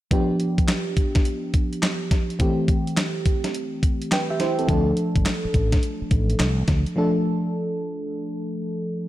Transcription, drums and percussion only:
0.11 kick loud
0.11 closed hi-hat medium
0.40 closed hi-hat medium
0.58 kick medium
0.58 closed hi-hat soft
0.68 snare loud
0.68 clap medium
0.68 closed hi-hat medium
0.97 kick medium
0.97 closed hi-hat medium
1.15 kick loud
1.15 snare medium
1.15 closed hi-hat medium
1.25 closed hi-hat medium
1.54 kick medium
1.54 closed hi-hat medium
1.73 closed hi-hat medium
1.82 snare loud
1.82 clap medium
1.82 closed hi-hat medium
2.11 kick medium
2.11 snare medium
2.11 closed hi-hat medium
2.30 closed hi-hat soft
2.40 kick loud
2.40 closed hi-hat medium
2.68 kick medium
2.68 closed hi-hat medium
2.87 closed hi-hat soft
2.97 snare loud
2.97 clap medium
2.97 closed hi-hat medium
3.25 kick medium
3.25 closed hi-hat medium
3.44 snare medium
3.44 closed hi-hat medium
3.54 closed hi-hat medium
3.83 kick medium
3.83 closed hi-hat medium
4.02 closed hi-hat medium
4.11 snare loud
4.11 clap medium
4.11 closed hi-hat medium
4.40 snare medium
4.40 closed hi-hat medium
4.59 closed hi-hat soft
4.69 kick loud
4.69 closed hi-hat medium
4.97 closed hi-hat medium
5.16 kick medium
5.16 closed hi-hat soft
5.25 snare loud
5.25 clap medium
5.25 closed hi-hat medium
5.54 kick medium
5.54 closed hi-hat medium
5.72 kick loud
5.72 snare medium
5.72 closed hi-hat medium
5.83 closed hi-hat medium
6.11 kick medium
6.11 closed hi-hat medium
6.30 closed hi-hat medium
6.39 snare loud
6.39 clap medium
6.39 closed hi-hat medium
6.68 kick medium
6.68 snare medium
6.68 closed hi-hat medium
6.86 closed hi-hat soft

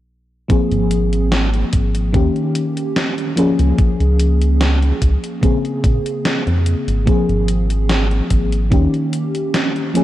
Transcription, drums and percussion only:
0.50 kick loud
0.50 closed hi-hat soft
0.71 closed hi-hat soft
0.91 closed hi-hat medium
1.13 closed hi-hat soft
1.32 snare loud
1.32 closed hi-hat medium
1.54 closed hi-hat soft
1.73 kick medium
1.73 closed hi-hat medium
1.95 closed hi-hat soft
2.14 kick loud
2.14 closed hi-hat medium
2.36 closed hi-hat soft
2.55 closed hi-hat medium
2.77 closed hi-hat soft
2.96 snare loud
2.96 closed hi-hat medium
3.18 closed hi-hat soft
3.37 closed hi-hat medium
3.59 closed hi-hat medium
3.78 kick loud
3.78 closed hi-hat soft
4.00 closed hi-hat soft
4.20 closed hi-hat medium
4.42 closed hi-hat medium
4.61 snare loud
4.61 closed hi-hat medium
4.82 closed hi-hat soft
5.02 kick medium
5.02 closed hi-hat medium
5.24 closed hi-hat soft
5.43 kick loud
5.43 closed hi-hat medium
5.65 closed hi-hat soft
5.84 kick loud
5.84 closed hi-hat medium
6.06 closed hi-hat medium
6.25 snare loud
6.25 closed hi-hat medium
6.47 closed hi-hat soft
6.66 closed hi-hat medium
6.88 closed hi-hat medium
7.07 kick loud
7.07 closed hi-hat soft
7.29 closed hi-hat soft
7.48 closed hi-hat medium
7.70 closed hi-hat soft
7.89 snare loud
7.89 closed hi-hat medium
8.11 closed hi-hat soft
8.30 kick medium
8.30 closed hi-hat medium
8.52 closed hi-hat soft
8.72 kick loud
8.72 closed hi-hat medium
8.94 closed hi-hat soft
9.13 closed hi-hat medium
9.35 closed hi-hat soft
9.54 snare loud
9.54 closed hi-hat medium
9.76 closed hi-hat soft
9.95 closed hi-hat medium

